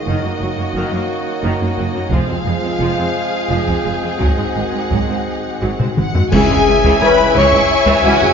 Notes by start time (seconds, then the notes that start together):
Already playing: D#3 C#4 D#4 C#5 D#5
0.05 F#1 F#2 D#3 A#3 F#4 A#4 F#5
0.23 F#2 A#3
0.40 F#1 F#2 F#3
0.57 F#2 A#3
0.74 F#1 F#2 D#3
0.92 F#2 A#3
1.43 F#1 F#2 D#3
1.60 F#2 A#3
1.77 F#1 F#2 F#3
1.94 F#2 A#3
2.11 F1 F2 F3 G#3 C4 F4 G#4 C5 F5, taiko
2.29 F2 C4
2.45 F1 F2 G#3
2.63 F2 C4
2.79 F1 F2 F3
2.97 F2 C4
3.49 F1 F2 F3
3.67 F2 C4, taiko
3.84 F1 F2 G#3
4.02 F2 C4
4.19 G#1 G#2 D#3 F#3 F#4 D#5 F#5, taiko
4.37 G#2 C4
4.54 G#1 G#2 G#3
4.71 G#2 C4
4.89 G#1 G#2 F#3, taiko
5.07 G#2 C4
5.61 G#1 G#2 F#3
5.79 G#2 C4, taiko low-mid
5.96 G#1 G#2 G#3 F#4 F#5, taiko mid
6.14 G#2 C4, taiko low
6.31 C#2 C#3 E3 C#4 E4 G#4 C#5 E5 G#5, concert bass drum, taiko, crash
6.49 C#2 E3, taiko low
6.67 C#2 C#3
6.84 C#2 E3, taiko
7.00 C#2 E3 C#4 B4 G#5 B5
7.18 C#2 C#3, taiko rim
7.35 C#2 E3 C#5 C#6, taiko
7.52 C#2 E3, taiko low
7.86 C#2 E3, taiko
8.04 C#2 E3 C#4 F#4 F#5 G#5
8.21 C#2 C#3, taiko low